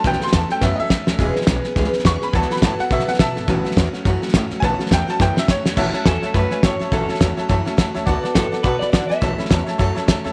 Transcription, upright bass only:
X:1
M:4/4
L:1/8
Q:"Swing" 1/4=209
K:A
V:1 name="Upright bass" clef=bass
A,,, z E,, z F,, z F,, D,, | E,,, z B,,, z C,, z E,, z | D,, z A,, z B,, z B,, G,,, | A,,, z E,, z F,, z A,, z |
A,,, z E,, z F,, z F,, E,, | A,,, z E,, z F,, z A,, z | A,,, z E,, z F,, z F,, E,, | D,, z A,, z B,, z D, z |
A,,, z E,, z F,, z F,, E,, |]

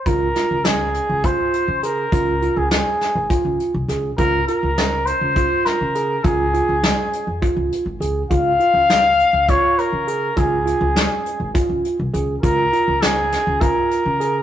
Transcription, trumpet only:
X:1
M:7/8
L:1/16
Q:1/4=102
K:Db
V:1 name="Trumpet"
B4 A4 c4 B2- | B3 A A4 z6 | B2 B4 c4 B4 | A8 z6 |
f8 d2 B4 | A8 z6 | B4 A4 B6 |]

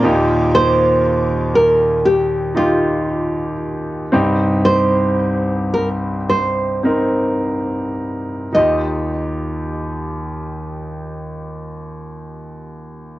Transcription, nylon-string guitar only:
X:1
M:4/4
L:1/8
Q:1/4=54
K:Cm
V:1 name="Nylon-string guitar"
z c2 B G F2 z | z c2 B c3 z | e8 |]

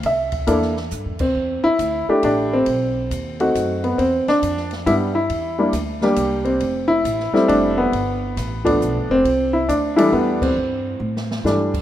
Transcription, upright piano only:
X:1
M:3/4
L:1/8
Q:"Swing" 1/4=137
K:Cmix
V:1 name="Upright piano"
e4- e C- | [K:C] C E2 z D C- | C3 z2 B, | C D2 z E E- |
E3 z2 C- | C E2 z D B,- | B,3 z2 C- | C E D E B, C- |
C4 z2 |]
V:2 name="Upright piano"
z2 [B,DEA] z3 | [K:C] z3 [A,DEG]3 | z3 [A,C^D^F]3 | z4 [G,B,D] z |
z [G,_B,DE] z [G,B,DG]3 | z3 [G,A,CE]3 | z3 [F,A,B,D]3 | z3 [E,G,A,D]3 |
z4 [E,G,A,D] z |]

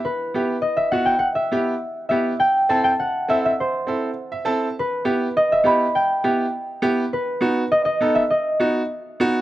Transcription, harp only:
X:1
M:4/4
L:1/8
Q:1/4=203
K:Em
V:1 name="Harp"
B4 ^d e f g | f e3 z2 e2 | g2 a g f2 e e | c3 z4 z |
B4 ^d e b2 | g2 z6 | B4 ^d d2 e | ^d6 z2 |]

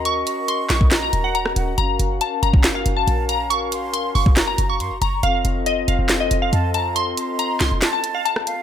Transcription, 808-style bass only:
X:1
M:4/4
L:1/16
Q:1/4=139
K:Gblyd
V:1 name="808-style bass" clef=bass
E,,2 z4 B,,,4 E,,,4 E,,,2 | G,,,2 G,,,2 z2 G,,,4 G,,,2 B,,,4- | B,,,6 G,,,4 G,,,2 G,, G,,, G,,,2 | F,,,2 F,,,4 F,,, F,,,3 F,,,2 F,,4- |
F,,2 z4 C,, F,,, z8 |]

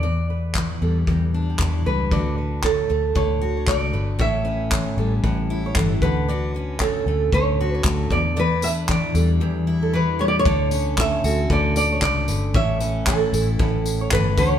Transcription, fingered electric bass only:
X:1
M:4/4
L:1/8
Q:"Swing 16ths" 1/4=115
K:D
V:1 name="Fingered electric bass" clef=bass
E,,3 E,, E,,2 E,, C,, | D,,3 D,, D,,2 C,, G,,, | A,,,3 A,,, A,,,2 G,,, D,,- | D,,3 D,, D,,2 D,, E,,- |
E,,3 E,, z4 | D,,3 D,, D,,2 C,, G,,, | A,,,3 A,,, A,,,2 G,,, D,, |]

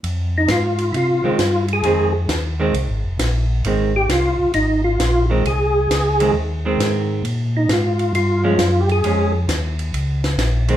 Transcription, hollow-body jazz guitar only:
X:1
M:4/4
L:1/8
Q:"Swing" 1/4=133
K:Fm
V:1 name="Hollow-body jazz guitar" clef=bass
z4 z [E,A,C] z2 | [E,A,C] z2 [E,A,C] z4 | [E,A,C] z6 [E,A,C] | z3 [E,A,C] z [E,A,C]3 |
z4 z [F,A,D] z2 | [F,A,D] z6 [E,A,C] |]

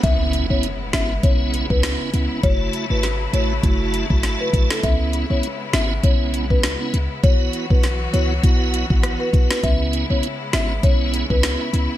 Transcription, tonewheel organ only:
X:1
M:4/4
L:1/16
Q:"Swing 16ths" 1/4=100
K:C#m
V:1 name="Tonewheel organ"
[B,CE]3 [B,CE] z2 [B,CE] z [B,CE]3 [B,CE]3 [B,CE]2 | [A,EF]3 [A,EF] z2 [A,EF] z [A,EF]3 [A,EF]3 [A,EF]2 | [B,CE]3 [B,CE] z2 [B,CE] z [B,CE]3 [B,CE] z [B,CE] z2 | [B,EF]3 [B,EF] z2 [B,EF] z [B,EF]3 [B,EF]3 [B,EF]2 |
[B,CE]3 [B,CE] z2 [B,CE] z [B,CE]3 [B,CE]3 [B,CE]2 |]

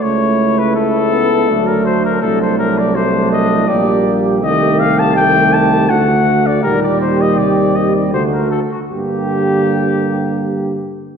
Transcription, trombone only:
X:1
M:3/4
L:1/8
Q:1/4=81
K:Gm
V:1 name="Trombone" clef=bass
A,3 z ^F,2 | ^F,2 F,2 G,2 | E,2 E,2 D,2 | B,,2 C,2 D, z |
D,4- D, z |]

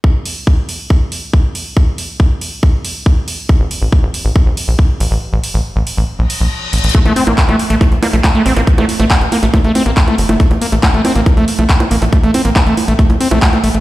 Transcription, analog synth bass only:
X:1
M:4/4
L:1/16
Q:1/4=139
K:Aphr
V:1 name="Analog synth bass" clef=bass
z16 | z16 | z A,,, z A,,, z A,,, z A,,, z B,,, z B,,, z2 A,,, A,,, | z A,,, z A,,, z A,,, z A,,, z B,,, z B,,, z2 A,,, A,,, |
z A,,, z A,,, z A,,, z A,,, z B,,, z B,,, z2 A,,, A,,, | z A,,, z A,,, z A,,, z A,,, z A,,, z A,,, z2 G,,, G,,, | z A,,, z A,,, z A,,, z A,,, z B,,, z B,,, z2 A,,, A,,, | z A,,, z A,,, z A,,, z A,,, z B,,, z B,,, z2 A,,, A,,, |]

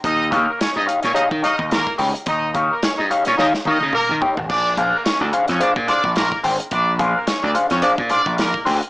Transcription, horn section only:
X:1
M:4/4
L:1/16
Q:"Swing 16ths" 1/4=108
K:Bbmix
V:1 name="Horn section"
[Ee]2 z [B,B] [_D_d] [Ee] z [Dd] [Ee] z [Ee]2 [B,B]2 z2 | [Ee]2 z [B,B] [_D_d] [Ee] z [Dd] [Ee] z [Ee]2 [B,B]2 z2 | [Dd]2 z [B,B] [_D_d] [=D=d] z [_D_d] [=D=d] z [Dd]2 [B,B]2 z2 | [Dd]2 z [B,B] [_D_d] [=D=d] z [_D_d] [=D=d] z [Dd]2 [B,B]2 z2 |]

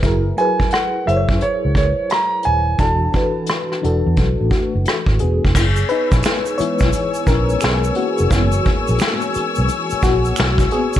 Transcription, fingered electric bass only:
X:1
M:4/4
L:1/16
Q:"Swing 16ths" 1/4=87
K:F#mix
V:1 name="Fingered electric bass" clef=bass
F,,,2 z4 F,,, F,, z C,,2 z3 D,,,2 | E,,,2 z4 E,,, E,, B,,, =A,,, z F,,, z G,,, E,,, ^E,,, | F,,,2 z A,,, z3 B,,, z2 A,,,2 B,,,2 z ^E,,, | F,,,2 z A,,, z3 B,,, z2 A,,,2 B,,,2 z2 |]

